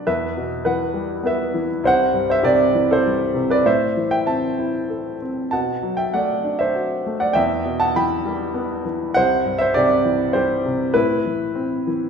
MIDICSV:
0, 0, Header, 1, 2, 480
1, 0, Start_track
1, 0, Tempo, 597015
1, 49, Time_signature, 3, 2, 24, 8
1, 2449, Tempo, 617920
1, 5329, Tempo, 601805
1, 9589, End_track
2, 0, Start_track
2, 0, Title_t, "Grand piano"
2, 0, Program_c, 0, 0
2, 0, Control_c, 0, 64, 127
2, 54, Note_on_c, 0, 71, 60
2, 55, Note_on_c, 0, 76, 78
2, 57, Note_on_c, 0, 40, 57
2, 61, Control_c, 0, 64, 0
2, 199, Control_c, 0, 64, 127
2, 298, Note_on_c, 0, 47, 46
2, 494, Note_off_c, 0, 71, 0
2, 495, Note_off_c, 0, 76, 0
2, 522, Note_on_c, 0, 71, 63
2, 528, Note_on_c, 0, 52, 46
2, 533, Note_on_c, 0, 78, 69
2, 753, Note_on_c, 0, 55, 46
2, 968, Note_off_c, 0, 71, 0
2, 992, Note_on_c, 0, 59, 48
2, 1011, Note_on_c, 0, 71, 54
2, 1020, Note_off_c, 0, 78, 0
2, 1020, Note_on_c, 0, 76, 77
2, 1218, Note_off_c, 0, 47, 0
2, 1228, Note_off_c, 0, 52, 0
2, 1240, Note_on_c, 0, 52, 56
2, 1341, Note_off_c, 0, 71, 0
2, 1346, Note_off_c, 0, 76, 0
2, 1453, Note_off_c, 0, 40, 0
2, 1455, Note_off_c, 0, 55, 0
2, 1462, Note_off_c, 0, 59, 0
2, 1473, Note_off_c, 0, 52, 0
2, 1477, Note_on_c, 0, 36, 65
2, 1491, Note_on_c, 0, 72, 74
2, 1493, Control_c, 0, 64, 0
2, 1506, Note_on_c, 0, 78, 99
2, 1629, Control_c, 0, 64, 127
2, 1718, Note_on_c, 0, 43, 50
2, 1823, Note_off_c, 0, 72, 0
2, 1848, Note_on_c, 0, 72, 61
2, 1861, Note_on_c, 0, 76, 88
2, 1866, Note_off_c, 0, 78, 0
2, 1956, Note_on_c, 0, 67, 67
2, 1958, Note_on_c, 0, 48, 58
2, 1959, Note_off_c, 0, 72, 0
2, 1966, Note_off_c, 0, 76, 0
2, 1966, Note_on_c, 0, 74, 87
2, 2207, Note_on_c, 0, 52, 57
2, 2299, Note_off_c, 0, 67, 0
2, 2339, Note_on_c, 0, 69, 70
2, 2341, Note_off_c, 0, 74, 0
2, 2353, Note_on_c, 0, 72, 76
2, 2458, Note_on_c, 0, 55, 47
2, 2656, Note_off_c, 0, 43, 0
2, 2668, Note_off_c, 0, 48, 0
2, 2679, Note_on_c, 0, 48, 50
2, 2777, Note_off_c, 0, 69, 0
2, 2805, Note_on_c, 0, 71, 62
2, 2813, Note_on_c, 0, 74, 85
2, 2828, Note_off_c, 0, 72, 0
2, 2888, Note_off_c, 0, 36, 0
2, 2899, Note_off_c, 0, 52, 0
2, 2910, Note_off_c, 0, 55, 0
2, 2911, Note_off_c, 0, 48, 0
2, 2914, Note_off_c, 0, 71, 0
2, 2926, Note_on_c, 0, 72, 75
2, 2927, Note_on_c, 0, 45, 60
2, 2929, Note_off_c, 0, 74, 0
2, 2931, Note_on_c, 0, 76, 81
2, 2933, Control_c, 0, 64, 0
2, 3070, Control_c, 0, 64, 127
2, 3167, Note_on_c, 0, 52, 47
2, 3254, Note_off_c, 0, 72, 0
2, 3262, Note_off_c, 0, 76, 0
2, 3274, Note_on_c, 0, 76, 59
2, 3276, Note_on_c, 0, 79, 82
2, 3382, Note_off_c, 0, 76, 0
2, 3394, Note_on_c, 0, 76, 55
2, 3398, Note_on_c, 0, 81, 74
2, 3399, Note_off_c, 0, 79, 0
2, 3399, Note_on_c, 0, 60, 43
2, 3647, Note_on_c, 0, 64, 44
2, 3887, Note_on_c, 0, 69, 37
2, 4092, Note_off_c, 0, 76, 0
2, 4094, Note_off_c, 0, 81, 0
2, 4100, Note_off_c, 0, 52, 0
2, 4127, Note_off_c, 0, 60, 0
2, 4139, Note_on_c, 0, 60, 39
2, 4339, Note_off_c, 0, 45, 0
2, 4352, Note_off_c, 0, 64, 0
2, 4356, Note_off_c, 0, 69, 0
2, 4363, Note_on_c, 0, 81, 76
2, 4368, Note_off_c, 0, 60, 0
2, 4376, Note_on_c, 0, 78, 57
2, 4378, Control_c, 0, 64, 0
2, 4378, Note_on_c, 0, 47, 52
2, 4515, Control_c, 0, 64, 127
2, 4610, Note_on_c, 0, 54, 45
2, 4710, Note_off_c, 0, 78, 0
2, 4719, Note_on_c, 0, 79, 68
2, 4729, Note_on_c, 0, 76, 52
2, 4739, Note_off_c, 0, 81, 0
2, 4841, Note_off_c, 0, 76, 0
2, 4849, Note_off_c, 0, 79, 0
2, 4849, Note_on_c, 0, 78, 68
2, 4854, Note_on_c, 0, 57, 44
2, 4860, Note_on_c, 0, 74, 50
2, 5086, Note_on_c, 0, 62, 48
2, 5191, Note_off_c, 0, 74, 0
2, 5201, Note_on_c, 0, 76, 76
2, 5215, Note_on_c, 0, 72, 57
2, 5221, Note_off_c, 0, 78, 0
2, 5331, Note_on_c, 0, 66, 43
2, 5547, Note_off_c, 0, 54, 0
2, 5566, Note_off_c, 0, 57, 0
2, 5578, Note_on_c, 0, 57, 47
2, 5666, Note_off_c, 0, 72, 0
2, 5685, Note_on_c, 0, 78, 75
2, 5689, Note_on_c, 0, 74, 56
2, 5706, Note_off_c, 0, 76, 0
2, 5789, Note_off_c, 0, 47, 0
2, 5791, Note_off_c, 0, 62, 0
2, 5792, Note_on_c, 0, 79, 89
2, 5800, Note_off_c, 0, 66, 0
2, 5801, Note_off_c, 0, 78, 0
2, 5803, Note_off_c, 0, 74, 0
2, 5804, Note_on_c, 0, 76, 75
2, 5809, Note_off_c, 0, 57, 0
2, 5814, Note_on_c, 0, 40, 65
2, 5827, Control_c, 0, 64, 0
2, 5983, Control_c, 0, 64, 127
2, 6047, Note_on_c, 0, 47, 41
2, 6134, Note_off_c, 0, 79, 0
2, 6140, Note_off_c, 0, 76, 0
2, 6160, Note_on_c, 0, 81, 92
2, 6171, Note_on_c, 0, 78, 64
2, 6282, Note_off_c, 0, 78, 0
2, 6289, Note_off_c, 0, 81, 0
2, 6291, Note_on_c, 0, 52, 56
2, 6293, Note_on_c, 0, 83, 81
2, 6299, Note_on_c, 0, 79, 66
2, 6528, Note_on_c, 0, 55, 46
2, 6756, Note_on_c, 0, 59, 53
2, 6984, Note_off_c, 0, 47, 0
2, 6985, Note_off_c, 0, 83, 0
2, 6988, Note_off_c, 0, 79, 0
2, 6990, Note_off_c, 0, 52, 0
2, 7002, Note_on_c, 0, 52, 44
2, 7223, Note_off_c, 0, 40, 0
2, 7232, Note_off_c, 0, 55, 0
2, 7232, Note_off_c, 0, 59, 0
2, 7236, Note_on_c, 0, 78, 108
2, 7241, Note_off_c, 0, 52, 0
2, 7247, Note_on_c, 0, 36, 66
2, 7253, Note_on_c, 0, 72, 75
2, 7265, Control_c, 0, 64, 0
2, 7418, Control_c, 0, 64, 127
2, 7483, Note_on_c, 0, 43, 49
2, 7575, Note_off_c, 0, 78, 0
2, 7584, Note_off_c, 0, 72, 0
2, 7588, Note_on_c, 0, 76, 93
2, 7611, Note_on_c, 0, 72, 73
2, 7714, Note_on_c, 0, 74, 88
2, 7719, Note_off_c, 0, 72, 0
2, 7720, Note_off_c, 0, 76, 0
2, 7725, Note_on_c, 0, 48, 52
2, 7731, Note_on_c, 0, 67, 63
2, 7961, Note_on_c, 0, 52, 46
2, 8161, Note_off_c, 0, 74, 0
2, 8170, Note_off_c, 0, 67, 0
2, 8183, Note_on_c, 0, 72, 73
2, 8198, Note_on_c, 0, 55, 47
2, 8199, Note_on_c, 0, 67, 60
2, 8406, Note_off_c, 0, 43, 0
2, 8431, Note_off_c, 0, 48, 0
2, 8443, Note_on_c, 0, 48, 49
2, 8641, Note_off_c, 0, 36, 0
2, 8645, Note_off_c, 0, 67, 0
2, 8655, Note_off_c, 0, 52, 0
2, 8662, Note_off_c, 0, 55, 0
2, 8666, Note_on_c, 0, 71, 83
2, 8671, Note_on_c, 0, 64, 57
2, 8672, Note_off_c, 0, 48, 0
2, 8679, Note_on_c, 0, 45, 57
2, 8684, Note_off_c, 0, 72, 0
2, 8688, Control_c, 0, 64, 0
2, 8839, Control_c, 0, 64, 127
2, 8924, Note_on_c, 0, 52, 43
2, 9158, Note_on_c, 0, 60, 45
2, 9400, Note_off_c, 0, 52, 0
2, 9412, Note_on_c, 0, 52, 46
2, 9589, Note_off_c, 0, 45, 0
2, 9589, Note_off_c, 0, 52, 0
2, 9589, Note_off_c, 0, 60, 0
2, 9589, Note_off_c, 0, 64, 0
2, 9589, Note_off_c, 0, 71, 0
2, 9589, End_track
0, 0, End_of_file